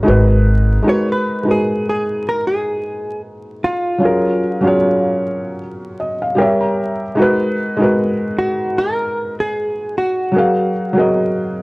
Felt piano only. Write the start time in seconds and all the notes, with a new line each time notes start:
0.03 G#3 D#4 F#4
0.08 A#4 B4
0.82 G#3 D#4 F#4
0.87 A#4 B4
1.43 G#3 D#4 F#4
1.49 A#4 B4
3.98 F#3 C#4 F4
4.03 G#4 A#4
4.61 F#3 C#4 F4
4.65 G#4 C#5
6.00 D#5
6.22 F5
6.35 G3 G4 A#4 G5
6.40 C#5 E5
6.61 A#5
7.15 G#3 D#4 F#4
7.20 A#4 B4
7.77 G#3 D#4 F#4
7.82 A#4 B4
10.31 F#3 F#4 G#4
10.36 A#4 F5
10.93 F#3 F#4 G#4
10.98 A#4 D#5